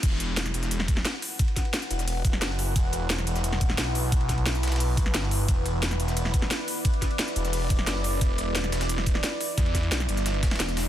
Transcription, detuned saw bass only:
\new Staff \with { instrumentName = "Detuned saw bass" } { \clef bass \time 4/4 \key e \minor \tempo 4 = 176 e,,4. e,,4. r4 | r4. e,,4. fis,,4 | e,,4. e,,4. b,,4~ | b,,2. g,,4 |
e,,4. e,,4. r4 | r4. e,,4. fis,,4 | e,,4. e,,4. r4 | e,4 b,,8 g,,4. e,,4 | }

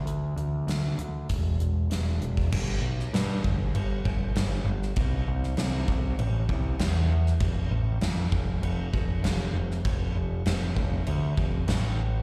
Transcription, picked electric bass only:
\new Staff \with { instrumentName = "Picked electric bass" } { \clef bass \time 4/4 \key f \lydian \tempo 4 = 98 d,8 d,8 d,8 d,8 e,,8 e,,8 e,,8 e,,8 | g,,8 b,,8 g,8 g,,8 g,,8 g,,8 g,,8 g,,8 | c,8 c,8 c,8 c,8 a,,8 c,8 e,4 | f,,8 a,,8 f,8 f,,8 f,,8 f,,8 f,,8 f,,8 |
f,,8 f,,8 f,,8 f,,8 d,8 f,,8 a,,4 | }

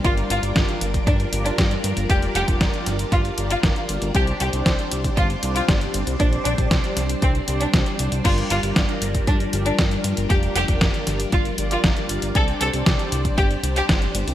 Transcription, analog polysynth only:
\new Staff \with { instrumentName = "Analog polysynth" } { \time 4/4 \key g \minor \tempo 4 = 117 <f' g' bes' d''>8. <f' g' bes' d''>4.~ <f' g' bes' d''>16 <f' g' bes' d''>4. | <f' g' bes' d''>8. <f' g' bes' d''>4.~ <f' g' bes' d''>16 <f' g' bes' d''>4. | <d' g' c'' d''>8. <d' g' c'' d''>4.~ <d' g' c'' d''>16 <d' g' c'' d''>4. | <d' g' c'' d''>8. <d' g' c'' d''>4.~ <d' g' c'' d''>16 <d' g' c'' d''>4. |
<f' g' bes' d''>8. <f' g' bes' d''>4.~ <f' g' bes' d''>16 <f' g' bes' d''>4. | <f' g' bes' d''>8. <f' g' bes' d''>4.~ <f' g' bes' d''>16 <f' g' bes' d''>4. | <d' g' c'' d''>8. <d' g' c'' d''>4.~ <d' g' c'' d''>16 <d' g' c'' d''>4. | }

